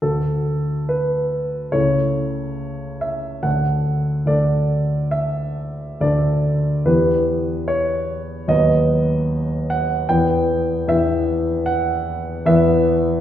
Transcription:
X:1
M:4/4
L:1/8
Q:1/4=72
K:D
V:1 name="Grand piano"
A2 B2 c3 e | f2 d2 e2 d2 | B2 c2 ^d3 f | g2 e2 f2 e2 |]
V:2 name="Grand piano"
[D,,A,F]4 [C,,A,EA]4 | [D,,A,DA]2 [D,,A,DA]4 [D,,A,DA]2 | [E,,E,B,G]4 [^D,,F,B,B]4 | [E,,E,B,B]2 [E,,E,B,B]4 [E,,E,B,B]2 |]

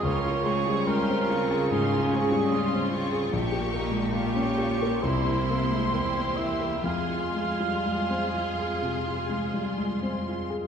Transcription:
X:1
M:4/4
L:1/16
Q:1/4=68
K:Fm
V:1 name="Violin section"
c'2 d'2 c'2 d'2 c'2 d'2 c'2 d'2 | d'4 d'4 c'8 | c'12- c'3 z |]
V:2 name="Cor anglais"
d4 B4 A6 z2 | z4 G4 c6 =e2 | f12 z4 |]
V:3 name="Violin section"
B2 A2 G2 F2 E2 D2 F2 F2 | G2 E2 F4 =E4 G4 | A12- A2 z2 |]
V:4 name="Viola section"
[DF]2 [CA]2 [DF]2 [CA]2 [DF]2 [CA]2 [DF]2 [CA]2 | [B,G]4 [B,G]4 [B,=E]8 | [A,F]12- [A,F]3 z |]
V:5 name="Grand piano"
D,, F A, G, A, C F A A,, F A, G, A, C F A | B,,, G B, A, B, D G B C,, =E B, A, B, C E B | F,, F A, G, A, C F A C, F A, G, A, C F A |]
V:6 name="Cello section" clef=bass
D,16 | B,,8 C,4 =E,,4 | F,,12- F,,3 z |]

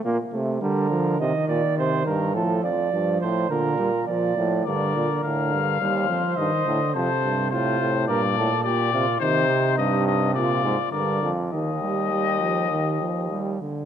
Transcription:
X:1
M:4/4
L:1/8
Q:1/4=104
K:Gm
V:1 name="Trumpet"
z8 | z8 | d2 f4 e2 | c2 c2 d2 d2 |
[K:Eb] c2 e e d2 d z | e6- e z |]
V:2 name="Flugelhorn"
z2 B2 e d c B | A d2 c B2 d2 | B4 c4 | A2 F2 B A G F |
[K:Eb] E4 F2 B z | G6- G z |]
V:3 name="Trombone" clef=bass
B, A, G, F, E,4 | F, z F,2 D, G, F, F, | D,2 D,2 G, F, E, D, | C,4 B,,4 |
[K:Eb] E, C,4- C, D, z | E, G, G, F, E, F, G, D, |]
V:4 name="Euphonium" clef=bass
B,, C, D,2 C, B,, C, G,, | A,, F,, G,, A,, B,,2 B,, A,, | G,, B,, A,, G,, E,, F,, G,, A,, | F,, G,, A,, A,, G,, A,, B,, C, |
[K:Eb] C,2 G,,2 B,, A,, G,, F,, | E,,6- E,, z |]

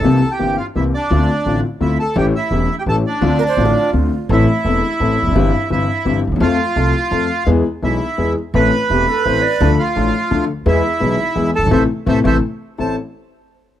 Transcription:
X:1
M:3/4
L:1/16
Q:1/4=170
K:Dm
V:1 name="Bandoneon"
[Aa]3 [Gg]3 [Ff]2 [Ee]2 [Dd]2- | [Dd]6 z2 [Ee]2 [Aa]2 | [Gg]2 [Ee]4- [Ee] [Gg] [Aa]2 [Dd]2- | [Dd]8 z4 |
[K:Am] [Ee]12- | [Ee]4 [Ee]6 z2 | [Ff]12 | z4 [Ee]6 z2 |
[Bb]12- | [Bb]2 [Ff]8 z2 | [Ee]8- [Ee]2 [Aa]2 | [Ace]2 z2 [Ace]2 [Ace]2 z4 |
a2 z8 z2 |]
V:2 name="Flute"
z12 | z12 | z12 | z2 B c2 F6- F |
[K:Am] z12 | z12 | z12 | z12 |
z4 G2 A2 c2 d2- | d z8 z3 | z12 | z12 |
c2 z8 z2 |]
V:3 name="Grand piano" clef=bass
[C,,C,E,B,CG]2 z2 [G,,,G,,E,B,CG]2 z2 [C,,C,E,B,CG]2 z2 | [D,,D,A,CF]2 z2 [A,,,A,,D,A,CF]2 z2 [D,,D,A,CF]2 z2 | [A,,,A,,E,A,^CG]2 z2 [E,,,E,,E,A,CG]2 z2 [A,,,A,,E,A,CG]2 z2 | [D,,D,A,CF]2 z2 [A,,,A,,D,A,CF]2 z2 [D,,D,A,CF]2 z2 |
[K:Am] [A,,,A,,E,A,CA]2 z2 [E,,,E,,E,A,CA]2 z2 [A,,,A,,E,A,CA]2 z/2 E,,/2 F,,/2 ^F,,/2 | [G,,,G,,E,G,CG]2 z2 [G,,,G,,E,G,CG]2 z2 [G,,,G,,E,G,CG]2 z/2 D,,/2 ^D,,/2 E,,/2 | [F,,F,A,CA]2 z2 [C,,C,F,A,CA]2 z2 [F,,F,A,CA]2 z2 | [E,,E,^G,B,^G]2 z2 [B,,,B,,E,G,B,G]2 z2 [E,,E,G,B,G]2 z2 |
[A,,,A,,E,A,CA]2 z2 [E,,,E,,E,A,CA]2 z2 [A,,,A,,E,A,CA]2 z2 | [D,,D,F,A,DA]2 z2 [A,,,A,,F,A,DA]2 z2 [D,,D,F,A,DA]2 z2 | [E,,E,^G,B,^G]2 z2 [B,,,B,,E,G,B,G]2 z2 [E,,E,G,B,G]2 z/2 ^F,,,/2 =G,,,/2 ^G,,,/2 | [C,E,A,]2 z2 [C,E,A,]2 [C,E,A,]2 z4 |
[A,,,CEA]2 z8 z2 |]
V:4 name="Upright bass" clef=bass
C,,3/2 z2 z/2 G,,,3/2 z2 z/2 C,,3/2 z2 z/2 | D,,3/2 z2 z/2 A,,,3/2 z2 z/2 D,,3/2 z2 z/2 | A,,,3/2 z2 z/2 E,,,3/2 z2 z/2 A,,,3/2 z2 z/2 | D,,3/2 z2 z/2 A,,,3/2 z2 z/2 D,,3/2 z2 z/2 |
[K:Am] A,,,3/2 z2 z/2 E,,,3/2 z2 z/2 A,,,3/2 z E,,,/2 F,,,/2 ^F,,,/2 | G,,,3/2 z2 z/2 G,,,3/2 z2 z/2 G,,,3/2 z D,,/2 ^D,,/2 E,,/2 | F,,3/2 z2 z/2 C,,3/2 z2 z/2 F,,3/2 z2 z/2 | E,,3/2 z2 z/2 B,,,3/2 z2 z/2 E,,3/2 z2 z/2 |
A,,,3/2 z2 z/2 E,,,3/2 z2 z/2 A,,,3/2 z2 z/2 | D,,3/2 z2 z/2 A,,,3/2 z2 z/2 D,,3/2 z2 z/2 | E,,3/2 z2 z/2 B,,,3/2 z2 z/2 E,,3/2 z ^F,,,/2 G,,,/2 ^G,,,/2 | A,,,3/2 z2 z/2 A,,,3/2 z/2 A,,,3/2 z4 z/2 |
A,,,2 z8 z2 |]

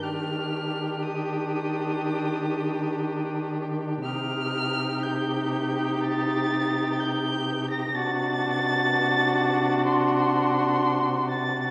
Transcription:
X:1
M:4/4
L:1/16
Q:1/4=61
K:Eblyd
V:1 name="Violin"
f'4 e'8- e'2 z2 | f'4 g'4 a'4 g'3 b' | a'8 c'6 a'2 |]
V:2 name="Violin"
G16 | G16 | ^F16 |]
V:3 name="Viola"
D16 | E16 | D16 |]
V:4 name="Cello" clef=bass
E,16 | C,16 | C,16 |]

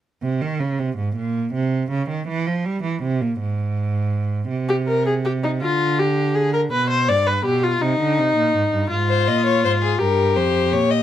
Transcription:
X:1
M:6/8
L:1/16
Q:3/8=54
K:Cphr
V:1 name="Violin"
z12 | z12 | z12 | z12 |
z c e d c A B2 c2 d e |]
V:2 name="Viola"
z12 | z12 | z G B A G E F2 G2 A B | =B c =d B G F E6 |
F6 G6 |]
V:3 name="Cello" clef=bass
z C, E, D, C, A,, B,,2 C,2 D, E, | =E, F, G, E, C, B,, A,,6 | C,6 =D,6 | =B,,2 G,,2 B,,2 C, =D, C, _B,, A,, G,, |
A,,2 B,,2 A,,2 G,,2 F,,2 B,,2 |]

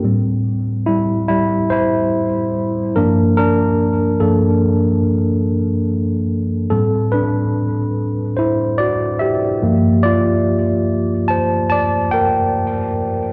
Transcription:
X:1
M:4/4
L:1/8
Q:"Swing 16ths" 1/4=72
K:G
V:1 name="Tine electric piano"
z2 [G,E] [G,E] [Ec]3 [D_B] | [D_B]2 [DA]2 z4 | A [DB]3 [Ec] [Fd] [Ge]2 | [=Fd]3 [ca] [da] [_Bg]2 z |]
V:2 name="Tine electric piano" clef=bass
[A,,G,C]6- [A,,G,C] [G,,=F,_B,] | z2 [G,,=F,_B,] z4 z | [A,,G,C] z6 [G,,=F,_B,]- | [G,,=F,_B,]2 z6 |]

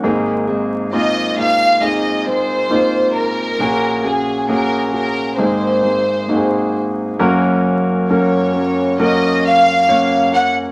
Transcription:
X:1
M:4/4
L:1/8
Q:1/4=67
K:Gblyd
V:1 name="Violin section"
z2 e f e c2 B- | B A B B c3 z | z2 d2 e f2 g |]
V:2 name="Steel-string acoustic guitar"
[A,,E,B,CEA] [B,CEA] [B,CEA] [B,CEA]2 [B,CEA] [B,CEA]2 | [B,DGA] [DGA] [B,DGA] [DGA] [A,,E,B,CEA] [B,CEA] [B,CEA]2 | [G,DGB]2 [G,DGB] [DGB] [G,DGB]2 [G,DGB] [DGB] |]
V:3 name="Grand piano"
[B,CEA]2 [B,CEF]2 [B,CEA]2 [B,CEF]2 | [B,DGA]2 [B,DGA]2 [B,CEA]2 [B,CEGA]2 | [B,DGB]2 [B,DGB]2 [B,DGB]2 [B,DGd]2 |]
V:4 name="Grand piano" clef=bass
[A,,,A,,]8 | [B,,,B,,]4 [A,,,A,,]4 | [G,,,G,,]8 |]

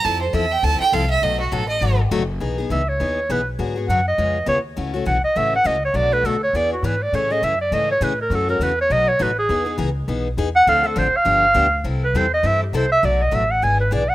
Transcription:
X:1
M:4/4
L:1/8
Q:"Swing" 1/4=203
K:E
V:1 name="Violin"
a =c e =g a g =f e | d F A d2 z3 | z8 | z8 |
z8 | z8 | z8 | z8 |
z8 | z8 | z8 | z8 |]
V:2 name="Clarinet"
z8 | z8 | z2 e c3 B z | z2 f d3 c z |
z2 f d e f d c | =d B A c d F B d | c d e =d ^d c B ^A | A ^A B c d c B G- |
G2 z4 z f | =f A =c f4- f | z B =c d e =G c e | =d ^d e f g B =d f |]
V:3 name="Steel-string acoustic guitar"
[=F,=CEA] z [F,CEA] z [F,CEA] z [F,CEA] z | [B,,F,A,DF] z [B,,F,A,DF] z [B,,F,A,DF] z [B,,F,A,DF] z | [E,B,DG] [B,DG] [E,B,DG] z [E,B,DG] z [E,B,DG] z | [=D,F,B,FG] [B,FG] [D,F,B,FG] z [C,G,B,^EG] z [C,G,B,EG] z |
[C,E,A,CF] [A,CF] [C,E,A,CF] z [C,E,A,CF] z [C,E,A,CF] z | [B,,F,A,=DF] [A,DF] [B,,F,A,DF] z [E,B,DG] z [E,B,DG] z | [C,E,A,CG] [A,CG] [C,E,A,CG] z [C,E,A,CG] z [C,E,A,CG] z | [C,E,A,CF] [A,CF] [C,E,A,CF] z [B,,F,A,DF] z [B,,F,A,DF] z |
[E,B,DG] [B,DG] [E,B,DG] z [E,B,DG] z [E,B,DG] z | [=D,=F,=C=DA] [CDA] [D,F,CDA] z [D,F,B,D=G] z [D,F,B,DG] z | [=C,E,=G,=CEA] z [C,E,G,CEA] z [C,E,G,CEA] z [C,E,G,CEA] z | [B,,F,A,=DF] z [B,,F,A,DF] z [E,B,DG] z [E,B,DG] z |]
V:4 name="Upright bass" clef=bass
=F,,2 E,,2 =D,, z =C,,2 | B,,,2 A,,,2 G,,,2 F,,,2 | B,,,2 C,,2 D,,2 B,,,2 | G,,2 F,,2 ^E,,2 D,,2 |
C,,2 B,,, z A,,,2 C,,2 | B,,,2 =D,,2 E,,2 G,,2 | A,,2 F,,2 G,,2 A,,2 | F,,2 E,,2 B,,,2 A,,,2 |
E,,2 C,,2 B,,,2 E,,2 | =D,,2 A,,, z =G,,,2 D,,2 | =C,,2 E,,2 =G,,2 C,,2 | B,,,2 A,,,2 G,,,2 B,,,2 |]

